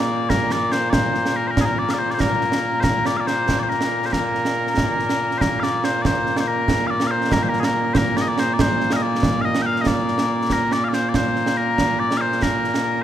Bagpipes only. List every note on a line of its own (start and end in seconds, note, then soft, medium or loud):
0.00 13.04 A#2 medium
0.00 13.04 A#3 medium
0.00 0.29 D5 loud
0.29 0.52 A#4 medium
0.52 0.72 D5 medium
0.72 0.90 C5 medium
0.90 1.36 C5 medium
0.90 0.93 D5 medium
1.36 1.47 A#4 medium
1.47 1.61 A#4 medium
1.47 1.51 C5 medium
1.61 1.65 G#4 medium
1.65 1.78 A#4 medium
1.78 1.91 D5 loud
1.91 1.98 D5 medium
1.91 1.94 F5 medium
1.98 2.11 C5 medium
2.11 2.20 C5 medium
2.11 2.14 D5 medium
2.20 2.80 A#4 medium
2.80 3.06 A#4 medium
2.80 2.84 C5 medium
3.06 3.17 D5 medium
3.17 3.27 D5 medium
3.17 3.20 F5 medium
3.27 3.59 C5 loud
3.59 3.69 C5 medium
3.59 3.63 D5 medium
3.69 4.06 A#4 medium
4.06 4.12 C5 medium
4.12 5.38 A#4 medium
5.38 5.60 A#4 medium
5.38 5.41 C5 medium
5.60 5.84 D5 loud
5.60 5.63 F5 loud
5.84 6.02 C5 medium
6.02 6.06 D5 medium
6.06 6.37 C5 medium
6.37 6.47 C5 medium
6.37 6.40 D5 medium
6.47 6.87 A#4 medium
6.87 7.07 D5 loud
6.87 6.90 F5 loud
7.07 7.33 C5 medium
7.07 7.11 F5 medium
7.33 7.43 A#4 medium
7.43 7.49 C5 medium
7.49 7.60 A#4 medium
7.60 7.64 G#4 medium
7.64 7.93 A#4 medium
7.93 8.17 A#4 medium
7.93 7.97 C5 medium
8.17 8.22 D5 medium
8.22 8.28 D#5 medium
8.28 8.39 D5 loud
8.39 8.53 C5 loud
8.53 8.61 D5 medium
8.61 8.93 C5 loud
8.93 9.03 D#5 medium
8.93 8.96 F5 medium
9.03 9.41 D5 loud
9.41 9.62 D#5 loud
9.41 9.45 F5 loud
9.62 9.66 G5 loud
9.66 9.81 F5 loud
9.81 9.87 D#5 medium
9.87 10.52 D5 loud
10.52 10.72 A#4 loud
10.72 10.84 D5 loud
10.84 10.89 F5 medium
10.89 10.94 D5 medium
10.94 11.09 C5 medium
11.09 11.15 D5 medium
11.15 11.57 C5 medium
11.57 11.99 A#4 loud
11.99 12.17 D5 loud
12.17 12.43 C5 loud
12.17 12.21 F5 loud
12.43 13.02 A#4 medium